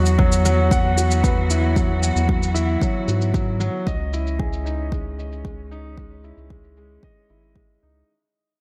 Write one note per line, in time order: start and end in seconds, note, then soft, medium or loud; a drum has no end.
0.00 2.12 E2 medium
0.00 3.83 E3 medium
0.00 0.18 F#3 medium
0.00 3.83 B3 medium
0.00 0.18 F#4 medium
0.00 3.83 F#4 medium
0.06 shaker soft
0.18 0.44 F#3 medium
0.18 kick medium
0.32 shaker soft
0.45 0.70 F#3 medium
0.45 shaker medium
0.71 0.96 F#5 loud
0.71 kick loud
0.71 shaker soft
0.97 1.23 F#4 medium
0.97 shaker medium
1.11 shaker soft
1.24 1.39 B4 medium
1.24 kick loud
1.24 shaker soft
1.50 1.75 E4 medium
1.50 shaker medium
1.76 2.01 F#3 medium
1.76 kick loud
1.76 shaker soft
2.02 2.28 F#5 medium
2.02 shaker medium
2.16 2.77 E2 medium
2.16 shaker soft
2.29 2.54 F#3 medium
2.29 kick loud
2.43 shaker soft
2.54 2.80 E4 medium
2.54 shaker medium
2.82 3.07 F#3 medium
2.82 kick medium
2.82 shaker soft
3.08 3.70 G#2 loud
3.08 3.33 F#4 medium
3.08 shaker medium
3.22 shaker soft
3.34 3.59 F#3 medium
3.34 kick loud
3.34 shaker soft
3.60 3.86 F#3 medium
3.60 shaker medium
3.86 6.32 C#2 loud
3.86 8.05 C#4 medium
3.86 4.12 D#5 medium
3.86 kick loud
3.86 shaker soft
4.13 4.39 E4 medium
4.13 shaker medium
4.27 shaker soft
4.39 4.54 G#4 medium
4.39 kick loud
4.53 shaker soft
4.65 4.91 D#4 medium
4.65 shaker medium
4.91 5.17 G#3 medium
4.91 kick loud
4.91 shaker soft
5.18 5.44 D#5 medium
5.18 shaker medium
5.32 shaker soft
5.45 5.70 G#3 medium
5.45 kick medium
5.45 shaker soft
5.71 5.96 D#4 medium
5.71 shaker medium
5.98 6.23 G#3 medium
5.98 kick medium
5.98 shaker soft
6.24 6.49 E4 medium
6.24 shaker medium
6.37 6.99 C#2 medium
6.37 shaker soft
6.50 6.76 G#3 medium
6.50 kick medium
6.64 shaker soft
6.77 7.02 G#3 medium
6.77 shaker soft
7.03 7.28 D#5 medium
7.03 kick medium
7.03 shaker soft
7.29 7.78 G#1 medium
7.29 7.55 E4 medium
7.29 shaker medium
7.43 shaker soft
7.56 7.81 G#3 medium
7.56 kick medium
7.83 8.03 C#2 medium
7.83 8.07 D#4 medium